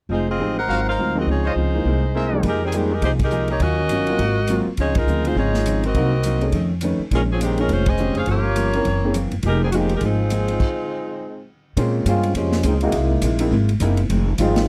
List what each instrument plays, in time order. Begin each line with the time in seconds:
0.09 upright bass F1, hollow-body jazz guitar F3 C4 D#4 G#4, saxophone section G#3 D#4 F4 C5
0.29 saxophone section C4 F4 G#4 D#5
0.38 upright bass A1, hollow-body jazz guitar F3 C4 D#4 G#4, grand piano G#3 C4 D#4 G4
0.57 saxophone section D#4 A#4 C5 F#5
0.68 upright bass G#1, hollow-body jazz guitar G#2 F#3, trumpet section F#4 A#4 C5 F5
0.72 hollow-body jazz guitar C4 F4
0.88 saxophone section D#4 A#4 C5 F5
0.98 upright bass D2, hollow-body jazz guitar G#2 F#3 C4 F4
1.15 grand piano F3 G#3 C4 D#4, saxophone section C4 F#4 A#4 D#5
1.26 upright bass C#2, hollow-body jazz guitar C#3 F3 C4, saxophone section G#3 D#4 F4 C#5
1.31 hollow-body jazz guitar D#4
1.44 saxophone section G#3 D#4 F4 C5, trumpet section F4 C5 C#5 D#5
1.56 upright bass C#2, hollow-body jazz guitar C#3 F3 C4 D#4
1.75 grand piano E3 G#3 A#3 D#4
1.85 upright bass C2, hollow-body jazz guitar C3 G#3 A#3 E4
2.15 hollow-body jazz guitar C3 G#3 A#3 E4, trumpet section G#4 A#4 C5 E5
2.32 grand piano F2 G3 G#3 A#3 D#4
2.43 upright bass F2, hollow-body jazz guitar F3 A#3 D#4 G#4, saxophone section G#3 D#4 G4 A#4, kick, ride
2.63 saxophone section D#3 G3 C4 G#4
2.72 saxophone section D#3 G#3 C4 G4, hollow-body jazz guitar F3 A#3 D#4 G#4, grand piano G3 G#3 A#3 D#4, hi-hat pedal, ride
2.92 saxophone section G#3 D#4 G4 A#4
3.01 upright bass C2, hollow-body jazz guitar F3 A#3 D#4 G#4, saxophone section G#3 D#4 G4 C5, kick, ride
3.19 saxophone section G#3 D#4 G4 A#4, kick, ride
3.31 hollow-body jazz guitar F3 A#3 D#4 G#4, hi-hat pedal
3.48 saxophone section A#3 D#4 G4 C#5, ride
3.60 upright bass D#2, hollow-body jazz guitar D#3 F#3 C#4 F4, saxophone section C#4 F#4 A#4 D#5, kick, ride
3.89 upright bass G1, hollow-body jazz guitar D#3 F#3 C#4, hi-hat pedal, ride
3.93 hollow-body jazz guitar F4
4.07 grand piano F#3 A#3 C4 F4, ride
4.19 upright bass G#1, hollow-body jazz guitar G#2 F#3 C4 F4, kick, ride
4.47 hollow-body jazz guitar G#2 F#3 C4 F4, grand piano F#3 A#3 C4 F4, hi-hat pedal, ride
4.66 muted upright bass stroke
4.77 upright bass C#2, hollow-body jazz guitar C#3 F3 C4, saxophone section G#3 D#4 F4 C#5, kick, ride
4.82 hollow-body jazz guitar D#4
4.95 saxophone section G#3 D#4 F4 A#4, kick, ride
5.07 upright bass D2, hollow-body jazz guitar C#3 F3 C4 D#4, hi-hat pedal
5.25 saxophone section G#3 D#4 F4 C5, grand piano G#3 C4 D#4 F4, ride
5.36 upright bass G#1, hollow-body jazz guitar C#3 F3 C4 D#4, saxophone section G#3 D#4 F4 C#5, kick
5.54 snare
5.66 hollow-body jazz guitar C#3 F3 C4 D#4, hi-hat pedal, ride
5.83 saxophone section C4 F#4 A#4 D#5, ride
5.94 upright bass C2, hollow-body jazz guitar C3 F#3 A#3, grand piano A#3 C4 D#4 F#4, kick, ride
5.98 hollow-body jazz guitar D#4
6.23 hollow-body jazz guitar C3 F#3 A#3 D#4, hi-hat pedal, ride
6.41 grand piano A3 C#4 D#4 G#4, ride
6.52 upright bass F2, hollow-body jazz guitar F2 D#3 A3 C#4, kick, ride
6.81 hollow-body jazz guitar F2 D#3 A3 C#4, grand piano A3 C#4 D#4 B4, hi-hat pedal, ride
6.99 muted upright bass stroke
7.11 upright bass A#1, hollow-body jazz guitar A#2 D#3 G#3 C#4, saxophone section G#3 C#4 F4 A#4, kick, ride
7.31 saxophone section F3 C4 C#4 G#4
7.40 hollow-body jazz guitar A#2 D#3 G#3 C#4, saxophone section D#3 G#3 C4 G4, hi-hat pedal, ride
7.57 saxophone section G#3 C#4 F4 A#4, grand piano C4 C#4 D#4 G#4, ride
7.69 upright bass F1, hollow-body jazz guitar A#2 D#3 G#3 C#4, saxophone section G#3 C#4 F4 C5, kick, ride
7.86 saxophone section C#4 G#4 C5 D#5, kick, ride
7.97 hollow-body jazz guitar A#2 D#3 G#3 C#4, grand piano C4 C#4 D#4 G4, hi-hat pedal
8.15 upright bass F1, saxophone section C#4 G#4 C5 F5, ride
8.26 upright bass G1, hollow-body jazz guitar G2 F3 A#3 C#4, saxophone section A#3 F4 G4 C#5, kick, ride
8.56 hollow-body jazz guitar G2 F3 A#3 C#4, hi-hat pedal, ride
8.73 grand piano C4 C#4 E4 A#4, ride
8.85 upright bass F#1, hollow-body jazz guitar F#2 E3 A#3 C4, kick, ride
9.05 grand piano C4 C#4 E4 G#4
9.14 hollow-body jazz guitar F#2 E3 A#3 C4, hi-hat pedal, ride
9.31 upright bass F#1, ride
9.43 upright bass F1, hollow-body jazz guitar F3 A#3 D#4 G#4, saxophone section G#3 D#4 G4 A#4, kick, ride
9.63 saxophone section D#3 G3 C4 G#4
9.70 hollow-body jazz guitar F3, grand piano G#3, saxophone section F#4, hi-hat pedal, ride
9.74 saxophone section D#3 G#3 C4 G4, hollow-body jazz guitar A#3 D#4 G#4, grand piano A#3 D#4 G4
9.89 ride
9.94 saxophone section G#3 D#4 G4 A#4
10.01 upright bass G#1, hollow-body jazz guitar F3 A#3 D#4, saxophone section G#3 C4 D#4 F4, kick, ride
10.05 hollow-body jazz guitar G#4
10.30 hollow-body jazz guitar F3 A#3 D#4 G#4, hi-hat pedal, ride
10.48 ride
10.60 kick, crash
11.77 upright bass A#2, grand piano G#3 A#3 C4 C#4 F4, hollow-body jazz guitar A#3 C#4 G#4 C5, kick, ride
12.05 upright bass G2, trombone section G#3 C4 C#4 F4, hollow-body jazz guitar A#3 C#4 G#4 C5, kick, hi-hat pedal, ride
12.23 ride
12.34 upright bass F2, trombone section C3 F3 G#3 C#4, hollow-body jazz guitar A#3 C#4 G#4 C5, kick, ride
12.52 snare
12.63 upright bass C#2, trombone section F3 G#3 C4 D#4, hollow-body jazz guitar A#3 C#4 G#4 C5, kick, hi-hat pedal, ride
12.81 trombone section G#3 A#3 D#4 E4, grand piano G#3 A#3 C4 D#4 F#4, ride
12.92 upright bass C2, hollow-body jazz guitar C3 G#3 A#3, kick, ride
12.97 hollow-body jazz guitar E4
13.22 upright bass A#1, hollow-body jazz guitar C3 G#3 A#3 E4, kick, hi-hat pedal, ride
13.39 grand piano G#3 A#3 C4 D#4 E4, ride
13.51 upright bass G#1, hollow-body jazz guitar C3 G#3 A#3 E4, kick
13.69 ride
13.80 upright bass F#1, hollow-body jazz guitar C3 G#3 A#3 E4, grand piano G#3 A#3 C4 D#4 E4, kick, hi-hat pedal, ride
13.97 ride
14.09 upright bass F1, hollow-body jazz guitar F2 D#3 G#3 C4, kick, ride
14.38 upright bass G#1, hollow-body jazz guitar F2 D#3 G#3 C4, grand piano G3 G#3 C4 D#4 F4, trombone section G#3 C4 D#4 F4, kick, hi-hat pedal, ride
14.56 snare, ride